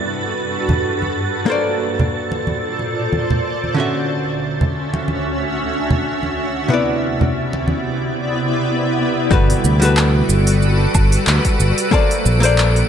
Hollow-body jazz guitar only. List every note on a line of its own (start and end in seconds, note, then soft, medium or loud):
0.00 1.44 G3 medium
0.00 1.45 F#4 medium
0.00 1.46 A4 medium
0.00 1.47 B4 medium
1.46 3.72 A#3 medium
1.46 3.73 A4 medium
1.46 3.74 C5 medium
1.51 3.75 D5 medium
3.74 6.66 D3 medium
3.74 6.67 C#4 medium
3.74 6.68 F#4 medium
3.80 6.69 E5 medium
6.68 8.00 C3 medium
6.68 8.01 B3 medium
6.68 8.02 E4 medium
6.73 8.03 D5 medium
9.31 9.77 G3 medium
9.31 9.78 F#4 medium
9.31 9.78 A4 medium
9.31 9.79 B4 loud
9.80 11.88 G3 medium
9.80 11.89 F#4 medium
9.80 11.90 A4 medium
9.85 11.90 B4 medium
11.91 12.38 A#3 medium
11.91 12.39 A4 medium
11.91 12.39 C5 medium
11.91 12.39 D5 loud
12.40 12.89 A#3 medium
12.40 12.89 A4 medium
12.40 12.89 C5 medium
12.45 12.89 D5 medium